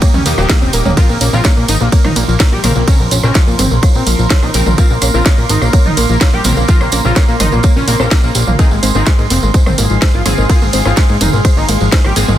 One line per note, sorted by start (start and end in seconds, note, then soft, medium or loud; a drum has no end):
0.00 0.10 A#2 medium
0.00 0.23 F3 medium
0.00 0.10 A#3 medium
0.00 0.23 D#4 medium
0.00 0.23 G4 medium
0.00 0.93 G4 medium
0.00 0.09 C#5 medium
0.00 0.95 D#5 medium
0.00 0.93 D#6 medium
0.00 kick loud
0.00 ride medium
0.00 tambourine medium
0.14 0.22 D#2 medium
0.14 0.22 C#3 medium
0.14 0.19 A#3 medium
0.14 0.22 C#4 medium
0.14 mid tom medium
0.14 tambourine soft
0.26 0.34 D#2 loud
0.26 0.34 A#2 medium
0.26 0.35 F3 medium
0.26 0.33 A#3 medium
0.26 0.34 A#3 medium
0.26 0.35 D#4 medium
0.26 0.35 G4 medium
0.26 open hi-hat loud
0.26 tambourine medium
0.38 0.46 D#1 medium
0.38 0.46 A#2 medium
0.38 0.94 F3 medium
0.38 0.46 A#3 medium
0.38 0.94 D#4 medium
0.38 0.43 F4 medium
0.38 0.94 G4 loud
0.38 cross-stick medium
0.38 tambourine soft
0.49 0.58 A#2 medium
0.49 0.54 F3 loud
0.49 0.58 A#3 medium
0.49 kick loud
0.49 snare loud
0.49 ride medium
0.49 tambourine medium
0.62 0.70 D#1 medium
0.62 0.70 C3 medium
0.62 0.70 C4 medium
0.62 0.69 C#4 medium
0.62 tambourine soft
0.73 0.81 D#1 loud
0.73 0.82 A#2 medium
0.73 0.82 A#3 medium
0.73 0.76 A#4 medium
0.73 open hi-hat loud
0.73 tambourine medium
0.85 0.93 D#1 medium
0.85 0.93 A#2 medium
0.85 0.94 A#3 medium
0.85 0.93 C#4 loud
0.85 mid tom medium
0.85 tambourine soft
0.97 1.30 C#3 medium
0.97 1.05 F3 loud
0.97 1.00 A#3 medium
0.97 1.30 C4 medium
0.97 1.06 F4 loud
0.97 8.55 A#4 medium
0.97 1.30 A#4 medium
0.97 12.36 C6 medium
0.97 kick loud
0.97 ride medium
0.97 tambourine medium
1.09 1.17 A#1 medium
1.09 1.17 A#2 medium
1.09 1.14 A#3 medium
1.09 1.17 A#3 medium
1.09 tambourine soft
1.21 1.29 A#1 loud
1.21 1.29 A#2 medium
1.21 1.29 A#3 medium
1.21 1.26 C#4 loud
1.21 open hi-hat loud
1.21 tambourine loud
1.33 1.41 A#1 medium
1.33 2.61 C#3 medium
1.33 1.41 F3 loud
1.33 1.36 A#3 medium
1.33 2.61 C4 medium
1.33 1.41 F4 loud
1.33 2.61 A#4 medium
1.33 tambourine soft
1.44 1.53 A#2 medium
1.44 1.53 A#3 medium
1.44 1.52 C#5 loud
1.44 kick loud
1.44 cross-stick medium
1.44 snare loud
1.44 ride medium
1.44 tambourine medium
1.57 1.65 A#2 medium
1.57 1.65 A#3 medium
1.57 1.60 A#3 medium
1.57 tambourine soft
1.68 1.77 G#1 loud
1.68 1.77 D#3 loud
1.68 1.74 A#3 medium
1.68 1.77 D#4 loud
1.68 open hi-hat loud
1.68 tambourine medium
1.80 1.89 A#1 medium
1.80 1.89 A#2 medium
1.80 1.89 A#3 medium
1.80 1.85 A#3 medium
1.80 tambourine soft
1.92 2.01 A#2 medium
1.92 2.01 A#3 medium
1.92 2.00 C#5 medium
1.92 kick loud
1.92 ride medium
1.92 tambourine medium
2.04 2.12 A#1 medium
2.04 2.12 D#3 loud
2.04 2.09 A#3 medium
2.04 2.12 D#4 medium
2.04 cross-stick medium
2.04 mid tom medium
2.04 tambourine soft
2.16 2.24 A#1 loud
2.16 2.25 A#2 medium
2.16 2.24 A#3 medium
2.16 2.21 A#3 loud
2.16 open hi-hat loud
2.16 tambourine medium
2.28 2.36 A#1 medium
2.28 2.36 A#2 medium
2.28 2.36 F3 medium
2.28 2.36 A#3 medium
2.28 tambourine soft
2.40 2.48 A#2 medium
2.40 2.48 A#3 medium
2.40 2.47 C#5 loud
2.40 kick loud
2.40 snare loud
2.40 ride medium
2.40 tambourine medium
2.52 2.60 A#1 medium
2.52 2.60 G3 medium
2.52 2.59 A#3 medium
2.52 2.60 G4 loud
2.52 tambourine soft
2.64 2.72 A#1 loud
2.64 2.72 A#2 medium
2.64 2.85 C#3 medium
2.64 2.72 A#3 medium
2.64 2.69 A#3 medium
2.64 2.85 C4 medium
2.64 2.85 A#4 loud
2.64 cross-stick medium
2.64 mid tom medium
2.64 open hi-hat loud
2.64 tambourine medium
2.75 2.84 A#1 medium
2.75 2.84 A#2 medium
2.75 2.84 A#3 medium
2.75 2.83 A#3 loud
2.75 tambourine soft
2.88 2.96 C#3 loud
2.88 3.21 C#3 medium
2.88 2.91 A#3 medium
2.88 3.21 C4 medium
2.88 2.96 C#4 loud
2.88 3.21 A#4 medium
2.88 kick loud
2.88 ride medium
2.88 tambourine medium
2.99 3.08 A#1 medium
2.99 3.08 F2 medium
2.99 3.08 F3 medium
2.99 3.05 A#3 medium
2.99 tambourine soft
3.11 3.20 A#1 loud
3.11 3.20 F2 medium
3.11 3.20 F3 medium
3.11 3.16 C#4 loud
3.11 open hi-hat loud
3.11 tambourine loud
3.23 3.31 A#1 medium
3.23 4.52 C#3 medium
3.23 3.32 C#3 loud
3.23 3.26 A#3 medium
3.23 4.52 C4 medium
3.23 3.32 C#4 loud
3.23 4.52 A#4 medium
3.23 cross-stick medium
3.23 tambourine soft
3.34 3.44 F2 medium
3.34 3.44 F3 medium
3.34 3.43 C#5 loud
3.34 kick loud
3.34 snare loud
3.34 ride medium
3.34 tambourine medium
3.47 3.55 F2 medium
3.47 3.55 A#2 medium
3.47 3.55 F3 medium
3.47 3.50 A#3 medium
3.47 tambourine soft
3.59 3.67 G#1 loud
3.59 3.67 C3 loud
3.59 3.64 A#3 medium
3.59 3.67 C4 medium
3.59 mid tom medium
3.59 open hi-hat loud
3.59 tambourine loud
3.71 3.79 A#1 medium
3.71 3.79 F2 medium
3.71 3.79 F3 medium
3.71 3.76 A#3 medium
3.71 tambourine soft
3.83 3.91 F2 medium
3.83 3.91 F3 medium
3.83 3.90 C#5 medium
3.83 kick loud
3.83 cross-stick medium
3.83 ride medium
3.83 tambourine medium
3.94 4.03 A#1 medium
3.94 4.03 C3 medium
3.94 4.00 A#3 medium
3.94 4.03 C4 loud
3.94 tambourine soft
4.07 4.15 A#1 loud
4.07 4.15 F2 medium
4.07 4.15 F3 medium
4.07 4.12 A#3 loud
4.07 open hi-hat loud
4.07 tambourine medium
4.19 4.27 A#1 medium
4.19 4.27 F2 medium
4.19 4.26 F3 medium
4.19 4.27 F3 medium
4.19 tambourine soft
4.30 4.39 F2 medium
4.30 4.39 F3 medium
4.30 4.38 C#5 loud
4.30 kick loud
4.30 snare loud
4.30 ride medium
4.30 tambourine medium
4.43 4.50 A#1 medium
4.43 4.51 D#3 loud
4.43 4.50 A#3 medium
4.43 4.51 D#4 loud
4.43 cross-stick soft
4.43 tambourine soft
4.54 4.62 A#1 loud
4.54 4.63 F2 medium
4.54 4.75 C#3 loud
4.54 4.63 F3 medium
4.54 4.59 A#3 medium
4.54 4.75 C4 medium
4.54 4.75 A#4 loud
4.54 open hi-hat loud
4.54 tambourine loud
4.66 4.74 A#1 medium
4.66 4.74 F2 medium
4.66 4.74 F3 medium
4.66 4.74 A#3 loud
4.66 mid tom medium
4.66 tambourine soft
4.78 5.11 C#3 medium
4.78 4.86 F3 loud
4.78 4.81 A#3 medium
4.78 5.11 C4 medium
4.78 4.86 F4 loud
4.78 5.11 A#4 medium
4.78 kick loud
4.78 ride medium
4.78 tambourine medium
4.90 4.98 A#1 medium
4.90 4.98 A#2 medium
4.90 4.95 A#3 medium
4.90 4.98 A#3 medium
4.90 tambourine soft
5.02 5.10 A#1 loud
5.02 5.10 A#2 medium
5.02 5.10 A#3 medium
5.02 5.07 C#4 loud
5.02 cross-stick medium
5.02 open hi-hat loud
5.02 tambourine loud
5.14 5.22 A#1 medium
5.14 6.42 C#3 medium
5.14 5.22 F3 medium
5.14 5.17 A#3 medium
5.14 6.42 C4 medium
5.14 5.22 F4 loud
5.14 6.42 A#4 medium
5.14 tambourine soft
5.26 5.34 A#2 medium
5.26 5.34 A#3 medium
5.26 5.33 C#5 loud
5.26 kick loud
5.26 snare loud
5.26 ride medium
5.26 tambourine medium
5.38 5.46 A#2 medium
5.38 5.41 A#3 medium
5.38 5.46 A#3 medium
5.38 tambourine soft
5.49 5.58 G#1 loud
5.49 5.58 D#3 medium
5.49 5.54 A#3 medium
5.49 5.58 D#4 loud
5.49 open hi-hat loud
5.49 tambourine loud
5.62 5.69 A#1 medium
5.62 5.70 A#2 medium
5.62 5.66 A#3 medium
5.62 5.70 A#3 medium
5.62 cross-stick medium
5.62 tambourine soft
5.73 5.82 A#2 medium
5.73 5.82 A#3 medium
5.73 5.81 C#5 medium
5.73 kick loud
5.73 ride medium
5.73 tambourine medium
5.84 5.93 A#1 medium
5.84 5.93 D#3 medium
5.84 5.90 A#3 medium
5.84 5.94 D#4 medium
5.84 mid tom medium
5.84 tambourine soft
5.97 6.05 A#1 loud
5.97 6.05 A#2 medium
5.97 6.02 A#3 loud
5.97 6.06 A#3 medium
5.97 open hi-hat loud
5.97 tambourine medium
6.09 6.17 A#1 medium
6.09 6.17 A#2 medium
6.09 6.16 F3 medium
6.09 6.17 A#3 medium
6.09 tambourine soft
6.21 6.29 A#2 medium
6.21 6.29 A#3 medium
6.21 6.28 C#5 loud
6.21 kick loud
6.21 cross-stick medium
6.21 snare loud
6.21 ride medium
6.21 tambourine medium
6.33 6.41 A#1 medium
6.33 6.41 G3 loud
6.33 6.40 A#3 medium
6.33 6.41 G4 loud
6.33 tambourine soft
6.44 6.53 A#1 loud
6.44 6.53 A#2 medium
6.44 6.66 C#3 loud
6.44 6.50 A#3 medium
6.44 6.53 A#3 medium
6.44 6.66 C4 medium
6.44 6.66 A#4 loud
6.44 mid tom medium
6.44 open hi-hat loud
6.44 tambourine loud
6.57 6.65 A#1 medium
6.57 6.65 A#2 medium
6.57 6.64 A#3 loud
6.57 6.65 A#3 medium
6.57 tambourine soft
6.68 7.02 C#3 medium
6.68 6.77 F3 loud
6.68 6.72 A#3 medium
6.68 7.02 C4 medium
6.68 6.77 F4 loud
6.68 7.02 A#4 medium
6.68 kick loud
6.68 ride medium
6.68 tambourine medium
6.81 6.89 A#1 medium
6.81 6.89 A#2 medium
6.81 6.85 A#3 medium
6.81 6.89 A#3 medium
6.81 cross-stick medium
6.81 tambourine soft
6.92 7.01 A#1 loud
6.92 7.01 A#2 medium
6.92 7.01 A#3 medium
6.92 6.97 C#4 loud
6.92 open hi-hat loud
6.92 tambourine loud
7.04 7.12 A#1 medium
7.04 7.85 C#3 medium
7.04 7.13 F3 medium
7.04 7.07 A#3 medium
7.04 7.85 C4 medium
7.04 7.13 F4 loud
7.04 7.85 A#4 medium
7.04 tambourine soft
7.16 7.25 A#2 medium
7.16 7.25 A#3 medium
7.16 7.24 C#5 loud
7.16 kick loud
7.16 snare loud
7.16 ride medium
7.16 tambourine soft
7.28 7.36 A#2 medium
7.28 7.31 A#3 medium
7.28 7.36 A#3 medium
7.28 tambourine soft
7.40 7.48 G#1 loud
7.40 7.48 D#3 medium
7.40 7.45 A#3 medium
7.40 7.48 D#4 medium
7.40 cross-stick medium
7.40 mid tom medium
7.40 open hi-hat loud
7.40 tambourine loud
7.52 7.60 A#1 loud
7.52 7.60 A#2 medium
7.52 7.57 A#3 medium
7.52 7.60 A#3 medium
7.52 tambourine soft
7.63 7.72 A#2 medium
7.63 7.72 A#3 medium
7.63 7.71 C#5 medium
7.63 kick loud
7.63 ride medium
7.63 tambourine medium
7.76 7.84 A#1 medium
7.76 7.84 C#3 medium
7.76 7.81 A#3 medium
7.76 7.84 C#4 loud
7.76 tambourine soft
7.88 7.96 A#1 loud
7.88 7.96 A#2 medium
7.88 7.97 C#3 medium
7.88 7.93 A#3 medium
7.88 7.96 A#3 medium
7.88 7.97 C4 medium
7.88 7.97 A#4 medium
7.88 open hi-hat loud
7.88 tambourine medium
8.00 8.08 A#1 medium
8.00 8.08 A#2 medium
8.00 8.56 C#3 medium
8.00 8.08 A#3 medium
8.00 8.03 C4 loud
8.00 8.56 C4 medium
8.00 8.56 A#4 loud
8.00 cross-stick medium
8.00 tambourine soft
8.11 8.20 A#2 medium
8.11 8.19 A#3 medium
8.11 8.20 A#3 medium
8.11 kick loud
8.11 snare loud
8.11 ride medium
8.11 tambourine medium
8.24 8.31 A#1 medium
8.24 8.32 A#2 medium
8.24 8.32 A#3 loud
8.24 8.31 C#4 medium
8.24 tambourine soft
8.35 8.43 A#1 loud
8.35 8.44 A#2 medium
8.35 8.44 A#3 medium
8.35 8.43 G4 medium
8.35 open hi-hat loud
8.35 tambourine loud
8.47 8.55 A#1 medium
8.47 8.55 A#2 medium
8.47 8.55 A#3 medium
8.47 8.52 F4 medium
8.47 mid tom medium
8.47 tambourine soft
8.59 8.67 D#3 loud
8.59 8.92 F3 medium
8.59 8.62 A#3 medium
8.59 8.92 C4 medium
8.59 8.67 D#4 loud
8.59 12.36 G#4 medium
8.59 8.92 G#4 loud
8.59 12.38 F5 medium
8.59 kick loud
8.59 ride medium
8.59 tambourine medium
8.71 8.79 G#1 medium
8.71 8.79 G#2 medium
8.71 8.79 G#3 medium
8.71 8.76 A#3 medium
8.71 tambourine soft
8.83 8.91 G#1 loud
8.83 8.91 G#2 medium
8.83 8.91 G#3 medium
8.83 8.88 C4 loud
8.83 open hi-hat loud
8.83 tambourine medium
8.95 9.03 G#1 medium
8.95 9.03 D#3 loud
8.95 10.23 F3 medium
8.95 8.98 A#3 medium
8.95 10.23 C4 medium
8.95 9.03 D#4 loud
8.95 10.23 G#4 medium
8.95 tambourine soft
9.06 9.15 G#2 medium
9.06 9.15 G#3 medium
9.06 9.14 C5 loud
9.06 kick loud
9.06 cross-stick medium
9.06 snare loud
9.06 ride medium
9.06 tambourine medium
9.18 9.27 G#2 medium
9.18 9.27 G#3 medium
9.18 9.22 A#3 medium
9.18 tambourine soft
9.30 9.39 F1 loud
9.30 9.39 C3 medium
9.30 9.35 A#3 medium
9.30 9.39 C4 medium
9.30 open hi-hat loud
9.30 tambourine medium
9.43 9.50 G#1 medium
9.43 9.51 G#2 medium
9.43 9.51 G#3 medium
9.43 9.47 A#3 medium
9.43 tambourine soft
9.54 9.63 G#2 medium
9.54 9.63 G#3 medium
9.54 9.62 C5 medium
9.54 kick loud
9.54 ride medium
9.54 tambourine medium
9.66 9.74 G#1 medium
9.66 9.74 C3 loud
9.66 9.71 A#3 medium
9.66 9.74 C4 medium
9.66 cross-stick medium
9.66 mid tom medium
9.66 tambourine soft
9.78 9.86 G#1 loud
9.78 9.86 G#2 medium
9.78 9.86 G#3 medium
9.78 9.83 A#3 loud
9.78 open hi-hat loud
9.78 tambourine medium
9.90 9.98 G#1 medium
9.90 9.98 G#2 medium
9.90 9.97 F3 medium
9.90 9.98 G#3 medium
9.90 tambourine soft
10.02 10.10 G#2 medium
10.02 10.10 G#3 medium
10.02 10.09 C5 loud
10.02 kick loud
10.02 snare loud
10.02 ride medium
10.02 tambourine medium
10.14 10.22 G#1 medium
10.14 10.22 F3 medium
10.14 10.21 A#3 medium
10.14 10.22 F4 medium
10.14 tambourine soft
10.25 10.34 G#1 loud
10.25 10.34 G#2 medium
10.25 10.47 F3 medium
10.25 10.34 G#3 medium
10.25 10.31 A#3 medium
10.25 10.47 C4 medium
10.25 10.47 G#4 loud
10.25 cross-stick medium
10.25 mid tom medium
10.25 open hi-hat loud
10.25 tambourine loud
10.38 10.46 G#1 medium
10.38 10.46 G#2 medium
10.38 10.46 G#3 medium
10.38 10.45 A#3 loud
10.38 tambourine soft
10.49 10.83 F3 medium
10.49 10.58 F3 loud
10.49 10.52 A#3 medium
10.49 10.83 C4 medium
10.49 10.58 F4 loud
10.49 10.83 G#4 medium
10.49 kick loud
10.49 ride medium
10.49 tambourine soft
10.61 10.70 G#1 medium
10.61 10.70 G#2 medium
10.61 10.70 G#3 medium
10.61 10.66 A#3 medium
10.61 tambourine soft
10.73 10.81 G#1 loud
10.73 10.82 G#2 medium
10.73 10.82 G#3 medium
10.73 10.78 C4 loud
10.73 open hi-hat loud
10.73 tambourine medium
10.85 10.93 G#1 loud
10.85 12.14 F3 medium
10.85 10.94 F3 medium
10.85 10.88 A#3 medium
10.85 12.14 C4 medium
10.85 10.94 F4 loud
10.85 12.14 G#4 medium
10.85 cross-stick medium
10.85 tambourine soft
10.96 11.06 G#2 medium
10.96 11.05 G#3 medium
10.96 11.05 C5 loud
10.96 kick loud
10.96 snare loud
10.96 ride medium
10.96 tambourine soft
11.09 11.17 G#2 medium
11.09 11.17 G#3 medium
11.09 11.12 A#3 medium
11.09 tambourine soft
11.21 11.29 F1 loud
11.21 11.29 D#3 medium
11.21 11.26 A#3 medium
11.21 11.29 D#4 loud
11.21 mid tom loud
11.21 open hi-hat loud
11.21 tambourine medium
11.33 11.41 G#1 medium
11.33 11.41 G#2 medium
11.33 11.41 G#3 medium
11.33 11.38 A#3 medium
11.33 tambourine soft
11.45 11.53 G#2 medium
11.45 11.53 G#3 medium
11.45 11.52 C5 medium
11.45 kick loud
11.45 cross-stick medium
11.45 ride medium
11.45 tambourine medium
11.57 11.65 G#1 medium
11.57 11.65 D#3 medium
11.57 11.62 A#3 medium
11.57 11.65 D#4 medium
11.57 tambourine soft
11.69 11.77 G#1 loud
11.69 11.77 G#2 medium
11.69 11.77 G#3 medium
11.69 11.74 A#3 loud
11.69 open hi-hat loud
11.69 tambourine medium
11.80 11.89 G#1 medium
11.80 11.89 G#2 medium
11.80 11.88 F3 medium
11.80 11.89 G#3 medium
11.80 tambourine soft
11.92 12.01 G#2 medium
11.92 12.01 G#3 medium
11.92 12.00 C5 loud
11.92 kick loud
11.92 snare loud
11.92 ride medium
11.92 tambourine medium
12.04 12.12 G#1 medium
12.04 12.12 G3 medium
12.04 12.12 A#3 medium
12.04 12.13 G4 loud
12.04 cross-stick medium
12.04 tambourine soft
12.16 12.24 G#1 loud
12.16 12.25 G#2 medium
12.16 12.37 F3 loud
12.16 12.25 G#3 medium
12.16 12.21 A#3 medium
12.16 12.37 C4 medium
12.16 12.37 G#4 loud
12.16 open hi-hat loud
12.16 tambourine medium
12.28 12.36 G#1 medium
12.28 12.36 G#2 medium
12.28 12.36 G#3 medium
12.28 12.36 A#3 loud
12.28 mid tom medium
12.28 tambourine soft